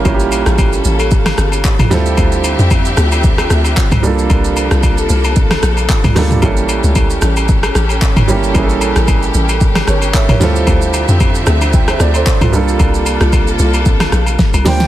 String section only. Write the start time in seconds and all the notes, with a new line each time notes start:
Already playing: A#3 C#4
0.05 A4
1.91 D3 F3 C4 G4 E5
4.04 C3 A#3 D4 A4
6.42 C#4 G4 A4
10.41 D3 F3 C4 E5
12.53 C3 A#3 D4 F4 A4